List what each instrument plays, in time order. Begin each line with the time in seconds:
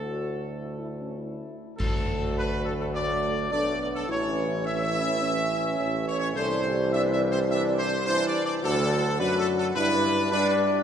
Already playing: tuba D2, trombone section A2 A3, trumpet section A4
0.00 french horn section F#4
0.60 french horn section E4
0.79 french horn section E4
1.00 french horn section C#4
1.18 french horn section E4
1.77 tuba D2, trombone section F#3 A3, french horn section F#4, trumpet section A4, concert bass drum, crash
2.37 trumpet section B4
2.65 trumpet section A4
2.80 trumpet section A4
2.94 trombone section F#3 A3, trumpet section D5
3.51 tuba B1, trombone section F#3 A3, french horn section D4, trumpet section D5
3.80 trombone section B3, trumpet section D5
3.95 trumpet section A4
4.08 tuba A1, trombone section E3 C#4, french horn section E4, trumpet section C#5
4.65 trombone section E3 C#4, french horn section C#4, trumpet section E5
4.94 french horn section E4
5.22 french horn section C#4
5.80 tuba A1
6.08 trumpet section C#5
6.18 trumpet section C#5
6.36 tuba C2, trombone section E3 D4, french horn section A4, trumpet section C5
6.65 french horn section G4
6.92 trombone section E3 D4, trumpet section E5
7.11 trumpet section E5
7.30 trumpet section C5
7.49 trombone section E3 D4, trumpet section E5
7.78 trumpet section C5
8.06 trombone section E3 D4, french horn section E4, trumpet section C5
8.27 trumpet section D5
8.45 trumpet section D5
8.63 tuba D2, trombone section F#3 D4, french horn section F#4, trumpet section A4
9.19 tuba F#2, french horn section F#4, trumpet section B4
9.39 trumpet section A4
9.58 trumpet section A4
9.74 tuba G2, trombone section G3 D4, french horn section E4, trumpet section B4
10.31 trombone section G3 D4, french horn section D4, trumpet section B4
10.49 trumpet section B4